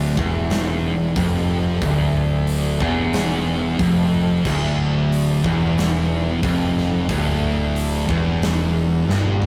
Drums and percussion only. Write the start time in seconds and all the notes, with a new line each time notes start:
0.17 kick
0.50 snare, open hi-hat
1.16 kick, open hi-hat
1.82 kick, open hi-hat
2.47 open hi-hat
2.80 kick
3.13 snare, open hi-hat
3.79 kick, open hi-hat
4.45 kick, crash
5.12 open hi-hat
5.44 kick
5.78 snare, open hi-hat
6.43 kick, open hi-hat
6.77 snare
7.09 kick, open hi-hat
7.76 open hi-hat
8.09 kick
8.42 snare, open hi-hat
9.09 snare
9.25 high tom
9.42 mid tom